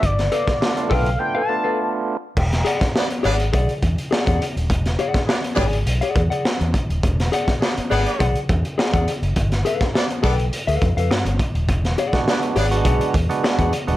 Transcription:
<<
  \new Staff \with { instrumentName = "Analog synth lead" } { \time 4/4 \key e \mixolydian \tempo 4 = 103 d''4. f''8 \tuplet 3/2 { g''8 a''4~ } a''8 r8 | r1 | r1 | r1 |
r1 | r1 | }
  \new Staff \with { instrumentName = "Clean electric guitar" } { \time 4/4 \key e \mixolydian r8 <a' b' f''>16 r8. <a' b' g''>16 r8 <a' b' f''>16 r16 <a' b' f''>16 r4 | r8 <gis' d'' fis''>16 r8. <gis' d'' fis''>16 r16 <gis' d'' fis''>16 r8. <gis' d'' gis''>16 <gis' d'' fis''>16 r8 | r8 <gis' d'' fis''>16 r8. <gis' d'' gis''>16 r8 <gis' d'' fis''>16 r16 <gis' d'' fis''>16 r4 | r8 <gis' d'' fis''>16 r8. <gis' d'' fis''>16 r16 <gis' d'' fis''>16 r8. <gis' d'' gis''>16 <gis' d'' fis''>16 r8 |
r8 <a' b' f''>16 r8. <a' b' g''>16 r8 <a' b' f''>16 r16 <a' b' f''>16 r4 | r8 <gis' d'' fis''>16 r8. <gis' d'' fis''>16 r16 <gis' d'' fis''>16 r8. <gis' d'' gis''>16 <gis' d'' fis''>16 r8 | }
  \new Staff \with { instrumentName = "Horn section" } { \time 4/4 \key e \mixolydian r1 | r4 <b d' gis' d''>16 r16 <b d' gis' d''>16 r2 r16 | r4 <b d' gis' d''>16 r16 <b d' gis' d''>16 r2 r16 | r4 <b d' gis' d''>16 r16 <b d' gis' d''>8. r4. r16 |
r4 <b d' a' d''>16 r16 <b d' a' d''>16 r2 r16 | r4 <b d' gis' d''>16 r16 <b d' gis' d''>16 r2 r16 | }
  \new Staff \with { instrumentName = "Tonewheel organ" } { \time 4/4 \key e \mixolydian r4 <a b d' f'>16 <a b d' f'>8 r16 <a b d' f'>8 <a b d' f'>4~ <a b d' f'>16 r16 | r1 | r1 | r1 |
r1 | r8. <gis b d' fis'>8. r16 <fis gis b d' fis'>8. r16 <gis b d' fis'>8. r16 <gis b d' fis'>16 | }
  \new Staff \with { instrumentName = "Fingered electric bass" } { \clef bass \time 4/4 \key e \mixolydian g,,8 r4 b,,8 r2 | e,,8 r4 gis,,8 b,,16 r16 e,16 r8 e,16 r16 dis,,16 | e,,8 r4 gis,,8 b,,16 r16 e,16 r8 e,16 r16 dis,,16 | e,,8 r4 gis,,16 r16 b,,16 r16 e,16 r8 e,16 r16 fis,,16 |
g,,8 r4 b,,8 r16 d,16 f,16 f,16 g,16 g,,16 r16 dis,,16 | e,,8 r4 gis,,8 b,,16 r16 e,16 r8 e,16 r16 dis,,16 | }
  \new DrumStaff \with { instrumentName = "Drums" } \drummode { \time 4/4 <hh bd>16 <hh sn>16 hh16 <hh bd sn>16 sn16 hh16 <hho bd>16 hh16 r4 r4 | <cymc bd>16 <hh sn>16 hh16 <hh bd sn>16 sn16 hh16 hho16 hh16 <hh bd>16 hh16 <hh bd>16 hh16 sn16 <hh bd>16 hh16 hh16 | <hh bd>16 <hh sn>16 hh16 <hh bd sn>16 sn16 hh16 <hho bd>16 hh16 hh16 hh16 <hh bd>16 hh16 sn16 hh16 <hh bd>16 hh16 | <hh bd>16 <hh sn>16 hh16 <hh bd sn>16 sn16 hh16 hho16 hh16 <hh bd>16 hh16 <hh bd>16 hh16 sn16 <hh bd>16 hh16 hh16 |
<hh bd>16 <hh sn>16 hh16 <hh bd sn>16 sn16 hh16 <hho bd>16 hh16 hh16 hh16 <hh bd>16 hh16 sn16 hh16 <hh bd>16 hh16 | <hh bd>16 <hh sn>16 hh16 <hh bd sn>16 sn16 hh16 hho16 hh16 <hh bd>16 hh16 <hh bd>16 hh16 sn16 <hh bd>16 hh16 hh16 | }
>>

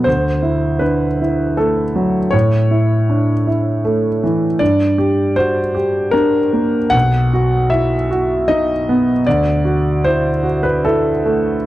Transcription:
\new Staff \with { instrumentName = "Grand piano" } { \time 3/4 \key d \mixolydian \tempo 4 = 78 << { c''4 b'4 a'4 | cis''2~ cis''8 r8 | d''4 c''4 bes'4 | fis''4 e''4 dis''4 |
d''4 c''8. b'16 a'4 | } \\ { d,8 e'8 d'8 e'8 a8 fis8 | a,8 e'8 d'8 e'8 a8 e8 | g,8 g'8 fis'8 g'8 d'8 bes8 | b,,8 fis'8 e'8 fis'8 dis'8 b8 |
d,8 fis'8 e'8 fis'8 e'8 a8 | } >> }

